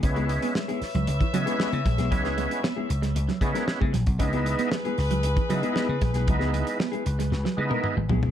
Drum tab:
HH |xxxx-xoxxxxx-xxx|xxxx--xxxxxx--xx|xxxx-xoxxxxx--xx|xxxx-xxx--------|
SD |----o-o-----o-oo|-o--o--o-o-oo-o-|----o-o-----o-oo|-o--o--ooo------|
T1 |----------------|----------------|----------------|-----------o----|
T2 |----------------|----------------|----------------|------------o---|
FT |----------------|----------------|----------------|--------------oo|
BD |o--------o----o-|o---------o--o-o|o--------o----o-|o---------------|